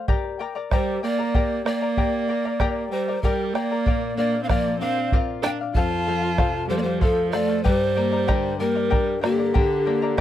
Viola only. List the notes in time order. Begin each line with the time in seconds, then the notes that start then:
0.71 G3
1.03 A#3
1.65 A#3
2.91 G3
3.23 G3
3.54 A#3
4.16 A#3
4.43 C4
4.48 A#3
4.79 C4
5.42 D4
5.74 F4
6.68 G3
6.78 A#3
6.83 G3
7.02 F3
7.34 A3
7.66 G3
8.60 G3
9.22 D3